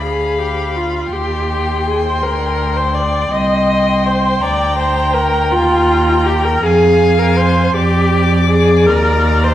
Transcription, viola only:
0, 0, Header, 1, 2, 480
1, 0, Start_track
1, 0, Key_signature, -3, "minor"
1, 0, Tempo, 736196
1, 734, Time_signature, 6, 3, 24, 8
1, 3607, Tempo, 743494
1, 6196, End_track
2, 0, Start_track
2, 0, Title_t, "Viola"
2, 0, Program_c, 0, 41
2, 19, Note_on_c, 0, 68, 58
2, 253, Note_on_c, 0, 67, 58
2, 263, Note_off_c, 0, 68, 0
2, 495, Note_on_c, 0, 65, 56
2, 505, Note_off_c, 0, 67, 0
2, 733, Note_on_c, 0, 67, 65
2, 742, Note_off_c, 0, 65, 0
2, 1216, Note_on_c, 0, 68, 64
2, 1226, Note_off_c, 0, 67, 0
2, 1333, Note_off_c, 0, 68, 0
2, 1338, Note_on_c, 0, 72, 64
2, 1451, Note_on_c, 0, 70, 74
2, 1461, Note_off_c, 0, 72, 0
2, 1803, Note_on_c, 0, 72, 65
2, 1813, Note_off_c, 0, 70, 0
2, 1918, Note_on_c, 0, 74, 71
2, 1928, Note_off_c, 0, 72, 0
2, 2159, Note_on_c, 0, 75, 84
2, 2169, Note_off_c, 0, 74, 0
2, 2648, Note_on_c, 0, 72, 74
2, 2658, Note_off_c, 0, 75, 0
2, 2884, Note_on_c, 0, 74, 85
2, 2894, Note_off_c, 0, 72, 0
2, 3115, Note_off_c, 0, 74, 0
2, 3119, Note_on_c, 0, 72, 83
2, 3350, Note_on_c, 0, 70, 86
2, 3360, Note_off_c, 0, 72, 0
2, 3592, Note_on_c, 0, 65, 91
2, 3601, Note_off_c, 0, 70, 0
2, 4076, Note_on_c, 0, 67, 73
2, 4085, Note_off_c, 0, 65, 0
2, 4201, Note_on_c, 0, 70, 81
2, 4211, Note_off_c, 0, 67, 0
2, 4314, Note_on_c, 0, 68, 86
2, 4324, Note_off_c, 0, 70, 0
2, 4673, Note_on_c, 0, 70, 75
2, 4682, Note_off_c, 0, 68, 0
2, 4788, Note_on_c, 0, 72, 84
2, 4798, Note_off_c, 0, 70, 0
2, 5035, Note_on_c, 0, 67, 86
2, 5045, Note_off_c, 0, 72, 0
2, 5516, Note_off_c, 0, 67, 0
2, 5520, Note_on_c, 0, 68, 84
2, 5762, Note_on_c, 0, 70, 86
2, 5772, Note_off_c, 0, 68, 0
2, 6129, Note_on_c, 0, 72, 78
2, 6138, Note_off_c, 0, 70, 0
2, 6196, Note_off_c, 0, 72, 0
2, 6196, End_track
0, 0, End_of_file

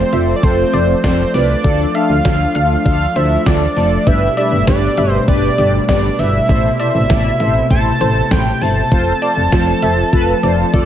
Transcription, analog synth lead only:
0, 0, Header, 1, 2, 480
1, 0, Start_track
1, 0, Tempo, 606061
1, 1302, Time_signature, 4, 2, 24, 8
1, 8596, End_track
2, 0, Start_track
2, 0, Title_t, "Analog synth lead"
2, 0, Program_c, 0, 81
2, 0, Note_on_c, 0, 72, 97
2, 282, Note_off_c, 0, 72, 0
2, 287, Note_on_c, 0, 74, 73
2, 343, Note_on_c, 0, 72, 100
2, 354, Note_off_c, 0, 74, 0
2, 818, Note_off_c, 0, 72, 0
2, 823, Note_on_c, 0, 72, 97
2, 1046, Note_off_c, 0, 72, 0
2, 1063, Note_on_c, 0, 74, 108
2, 1543, Note_on_c, 0, 77, 114
2, 1554, Note_off_c, 0, 74, 0
2, 2258, Note_off_c, 0, 77, 0
2, 2263, Note_on_c, 0, 77, 110
2, 2503, Note_on_c, 0, 76, 102
2, 2515, Note_off_c, 0, 77, 0
2, 2743, Note_on_c, 0, 74, 104
2, 2755, Note_off_c, 0, 76, 0
2, 3224, Note_on_c, 0, 76, 110
2, 3235, Note_off_c, 0, 74, 0
2, 3459, Note_off_c, 0, 76, 0
2, 3464, Note_on_c, 0, 76, 101
2, 3686, Note_off_c, 0, 76, 0
2, 3703, Note_on_c, 0, 74, 102
2, 4051, Note_off_c, 0, 74, 0
2, 4051, Note_on_c, 0, 72, 102
2, 4151, Note_off_c, 0, 72, 0
2, 4184, Note_on_c, 0, 74, 111
2, 4631, Note_off_c, 0, 74, 0
2, 4663, Note_on_c, 0, 74, 99
2, 4903, Note_on_c, 0, 76, 115
2, 4915, Note_off_c, 0, 74, 0
2, 5379, Note_off_c, 0, 76, 0
2, 5383, Note_on_c, 0, 76, 119
2, 6071, Note_off_c, 0, 76, 0
2, 6103, Note_on_c, 0, 81, 119
2, 6584, Note_on_c, 0, 79, 108
2, 6596, Note_off_c, 0, 81, 0
2, 6824, Note_on_c, 0, 81, 127
2, 6836, Note_off_c, 0, 79, 0
2, 8499, Note_off_c, 0, 81, 0
2, 8503, Note_on_c, 0, 69, 105
2, 8596, Note_off_c, 0, 69, 0
2, 8596, End_track
0, 0, End_of_file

